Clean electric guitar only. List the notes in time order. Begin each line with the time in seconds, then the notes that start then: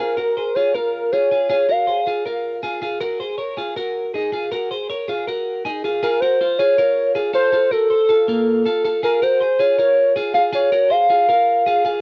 0.00 F4 G#4
0.17 F#4 A#4
0.37 G#4 C5
0.56 F4 G#4
0.74 F4 A#4
1.13 F4 G#4
1.31 F4 G#4
1.50 F4 G#4
1.69 F#4 A#4
1.87 G#4 C5
2.07 F4 G#4
2.25 F4 A#4
2.63 F4 G#4
2.82 F4 G#4
3.01 F#4 A#4
3.20 G#4 C5
3.38 A#4 C#5
3.57 F4 G#4
3.76 F#4 A#4
4.14 D#4 G#4
4.32 F4 G#4
4.51 F#4 A#4
4.71 G#4 C5
4.89 A#4 C#5
5.08 F4 G#4
5.27 F#4 A#4
5.65 D#4 G#4
5.84 F4 G#4
6.03 F4 G#4
6.22 F#4 A#4
6.41 F4 C5
6.59 F4 G#4
6.78 F4 A#4
7.15 F4 G#4
7.33 F4 A4
7.52 F4 A4
7.71 F#4 A#4
7.90 A4 C5
8.09 F4 A4
8.28 A#3 F4
8.65 F4 A4
8.85 F4 A4
9.03 F4 G#4
9.22 F#4 A#4
9.41 G#4 C5
9.59 F4 G#4
9.78 F4 A#4
10.16 F4 G#4
10.34 F4 G#4
10.53 F4 G#4
10.72 F#4 A#4
10.90 G#4 C5
11.10 F4 G#4
11.29 F4 A#4
11.66 F4 G#4
11.85 F4 G#4